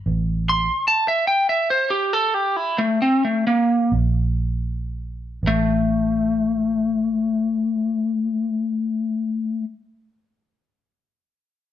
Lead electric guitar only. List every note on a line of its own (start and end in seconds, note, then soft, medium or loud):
0.49 0.86 C6 loud
0.88 1.06 A5 loud
1.08 1.27 E5 medium
1.27 1.47 G5 loud
1.49 1.68 E5 loud
1.70 1.90 C5 medium
1.90 2.13 G4 medium
2.13 2.34 A4 medium
2.34 2.56 G4 medium
2.56 2.77 E4 medium
2.78 2.99 A3 loud
3.02 3.22 C4 medium
3.25 3.45 A3 medium
3.47 3.91 A#3 loud
5.47 9.64 A3 medium